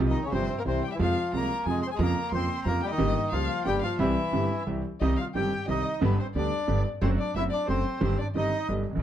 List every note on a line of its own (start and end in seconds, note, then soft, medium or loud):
0.00 0.13 C2 medium
0.00 0.13 C3 medium
0.00 0.13 F3 medium
0.00 0.13 G3 medium
0.00 0.13 F4 medium
0.07 0.25 D#3 medium
0.07 0.25 D#4 medium
0.07 0.23 D#5 medium
0.24 0.33 C#3 medium
0.24 0.33 C#4 medium
0.24 0.32 C#5 medium
0.32 0.46 G1 medium
0.32 0.47 G1 medium
0.32 0.46 G2 medium
0.32 0.46 C3 soft
0.32 0.57 C3 medium
0.32 0.46 F3 soft
0.32 0.46 G3 soft
0.32 0.59 C4 medium
0.32 0.46 F4 medium
0.32 0.56 C5 medium
0.58 0.63 A#3 medium
0.58 0.62 A#4 medium
0.58 0.63 A#4 medium
0.65 0.80 C2 medium
0.65 0.80 C3 medium
0.65 0.83 C3 medium
0.65 0.80 E3 soft
0.65 0.80 G3 soft
0.65 0.84 C4 medium
0.65 0.80 E4 soft
0.65 0.82 C5 medium
0.84 0.93 G3 medium
0.84 0.94 G4 medium
0.84 0.91 G5 medium
0.92 0.98 E3 medium
0.92 0.98 E4 medium
0.92 0.95 E5 medium
0.99 1.14 F2 medium
0.99 1.13 C3 medium
0.99 1.14 F3 medium
0.99 1.32 F3 medium
0.99 1.14 G#3 medium
0.99 1.14 F4 medium
0.99 1.36 F4 medium
0.99 1.31 F5 medium
1.33 1.47 C2 medium
1.33 1.47 C3 medium
1.33 1.47 F3 soft
1.33 1.47 G#3 soft
1.33 1.48 F4 medium
1.33 1.66 A#4 loud
1.33 1.65 A#5 medium
1.37 1.66 A#3 medium
1.66 1.80 F2 medium
1.66 1.80 C3 soft
1.66 1.80 F3 medium
1.66 1.81 G#3 soft
1.66 1.80 F4 medium
1.66 1.82 G#5 medium
1.70 1.84 G#3 medium
1.70 1.84 G#4 medium
1.83 1.86 C6 medium
1.87 1.90 C4 medium
1.87 1.90 C5 loud
1.91 2.01 G#3 medium
1.91 2.00 G#4 medium
1.91 1.99 G#5 medium
1.99 2.13 F2 loud
1.99 2.13 F2 medium
1.99 2.13 C#3 medium
1.99 2.13 F3 medium
1.99 2.13 A#3 medium
1.99 2.32 A#3 medium
1.99 2.13 F4 medium
1.99 2.32 A#4 loud
1.99 2.30 A#5 medium
2.32 2.46 F2 medium
2.32 2.47 F2 medium
2.32 2.46 C#3 soft
2.32 2.47 F3 medium
2.32 2.47 A#3 soft
2.32 2.65 C4 medium
2.32 2.47 F4 soft
2.32 2.68 C5 loud
2.32 2.63 C6 medium
2.65 2.79 F2 medium
2.65 2.79 C#3 soft
2.65 2.80 F3 medium
2.65 2.80 A#3 soft
2.65 2.82 A#3 medium
2.65 2.80 F4 medium
2.65 2.83 A#4 loud
2.65 2.81 A#5 medium
2.82 2.91 G3 medium
2.82 2.91 G4 medium
2.82 2.89 G5 medium
2.89 3.30 D#3 medium
2.89 3.34 D#4 loud
2.89 3.29 D#5 medium
2.98 3.13 G1 medium
2.98 3.13 G2 medium
2.98 3.12 C#3 medium
2.98 3.13 G3 medium
2.98 3.13 A#3 medium
2.98 3.13 G4 medium
3.31 3.46 C#2 medium
3.31 3.47 C#2 medium
3.31 3.46 C#3 medium
3.31 3.64 F3 medium
3.31 3.46 G3 soft
3.31 3.47 A#3 soft
3.31 3.66 F4 loud
3.31 3.46 G4 medium
3.31 3.63 F5 medium
3.65 3.79 G1 medium
3.65 3.80 G1 medium
3.65 3.79 G2 medium
3.65 3.79 C#3 soft
3.65 3.79 G3 soft
3.65 3.82 G3 medium
3.65 3.79 A#3 soft
3.65 3.79 G4 medium
3.65 3.83 G4 loud
3.65 3.81 G5 medium
3.82 3.99 F3 medium
3.82 3.98 F4 medium
3.82 3.98 F5 medium
3.99 4.13 C2 loud
3.99 4.13 C2 medium
3.99 4.13 C3 medium
3.99 4.13 E3 medium
3.99 4.64 E3 medium
3.99 4.13 G3 medium
3.99 4.13 C4 medium
3.99 4.63 E4 medium
3.99 4.13 G4 medium
3.99 4.62 E5 medium
4.32 4.47 G1 medium
4.32 4.47 G2 medium
4.32 4.47 E3 soft
4.32 4.47 G3 soft
4.32 4.47 C4 soft
4.32 4.47 G4 medium
4.66 4.81 C2 medium
4.66 4.81 C3 medium
4.66 4.81 E3 medium
4.66 4.81 G3 soft
4.66 4.81 C4 soft
4.66 4.81 G4 medium
5.00 5.15 C2 medium
5.00 5.16 C2 medium
5.00 5.16 C3 medium
5.00 5.15 D#3 medium
5.00 5.16 G3 medium
5.00 5.16 C4 medium
5.00 5.18 D#4 medium
5.00 5.16 G4 medium
5.00 5.16 D#5 medium
5.00 5.18 D#5 medium
5.17 5.27 F4 medium
5.17 5.25 F5 medium
5.17 5.27 F5 medium
5.34 5.48 G1 medium
5.34 5.49 G1 medium
5.34 5.49 G2 medium
5.34 5.49 D#3 medium
5.34 5.49 G3 soft
5.34 5.49 C4 soft
5.34 5.66 G4 medium
5.34 5.49 G4 medium
5.34 5.66 G5 medium
5.34 5.67 G5 medium
5.68 5.82 C2 medium
5.68 5.82 C3 medium
5.68 5.82 D#3 soft
5.68 5.82 G3 soft
5.68 5.82 C4 soft
5.68 6.00 D#4 medium
5.68 5.82 G4 medium
5.68 5.99 D#5 medium
5.68 6.04 D#5 medium
6.01 6.16 G1 medium
6.01 6.15 G2 medium
6.01 6.15 D3 medium
6.01 6.16 G3 medium
6.01 6.16 B3 medium
6.01 6.19 B3 medium
6.01 6.15 G4 medium
6.01 6.17 B4 medium
6.01 6.18 B4 medium
6.19 6.27 C4 medium
6.19 6.27 C5 medium
6.35 6.49 D2 medium
6.35 6.49 D3 medium
6.35 6.49 G3 soft
6.35 6.49 B3 soft
6.35 6.83 D4 medium
6.35 6.49 G4 medium
6.35 6.81 D5 medium
6.35 6.83 D5 medium
6.68 6.82 G1 medium
6.68 6.82 G2 medium
6.68 6.82 D3 soft
6.68 6.82 G3 soft
6.68 6.82 B3 soft
6.68 6.82 G4 medium
7.01 7.15 F#1 loud
7.01 7.15 F#2 medium
7.01 7.15 D3 medium
7.01 7.16 F#3 medium
7.01 7.15 A3 medium
7.01 7.15 C4 medium
7.01 7.10 C4 medium
7.01 7.16 F#4 medium
7.01 7.09 C5 medium
7.01 7.10 C5 medium
7.18 7.35 D4 medium
7.18 7.33 D5 medium
7.18 7.34 D5 medium
7.35 7.48 F#1 medium
7.35 7.49 F#2 medium
7.35 7.49 D3 soft
7.35 7.49 F#3 medium
7.35 7.49 A3 soft
7.35 7.49 C4 soft
7.35 7.44 E4 medium
7.35 7.49 F#4 medium
7.35 7.42 E5 medium
7.35 7.44 E5 loud
7.51 7.68 D4 medium
7.51 7.66 D5 medium
7.51 7.68 D5 medium
7.68 7.82 F#1 medium
7.68 7.82 F#2 medium
7.68 7.82 D3 medium
7.68 7.82 F#3 medium
7.68 7.82 A3 soft
7.68 7.82 C4 soft
7.68 8.00 C4 medium
7.68 7.82 F#4 medium
7.68 7.99 C5 medium
7.68 8.02 C5 medium
8.01 8.15 G1 medium
8.01 8.15 G1 loud
8.01 8.15 G2 medium
8.01 8.15 D#3 medium
8.01 8.15 G3 medium
8.01 8.15 C4 medium
8.01 8.15 G4 medium
8.01 8.17 C5 medium
8.01 8.18 C5 medium
8.05 8.18 C4 medium
8.18 8.27 D4 medium
8.18 8.26 D5 medium
8.18 8.28 D5 medium
8.34 8.49 G1 medium
8.34 8.49 G2 medium
8.34 8.49 D#3 soft
8.34 8.49 G3 soft
8.34 8.49 C4 soft
8.34 8.68 D#4 medium
8.34 8.49 G4 medium
8.34 8.66 D#5 medium
8.34 8.68 D#5 loud
8.68 8.83 G1 medium
8.68 8.83 G2 medium
8.68 8.83 D3 soft
8.68 8.83 G3 soft
8.68 8.83 B3 soft
8.68 8.83 G4 medium
8.90 8.92 A1 soft
8.90 8.94 A1 medium
8.90 8.96 A#1 medium
8.95 8.99 A#1 medium
8.95 9.01 B1 medium
8.99 9.03 B1 medium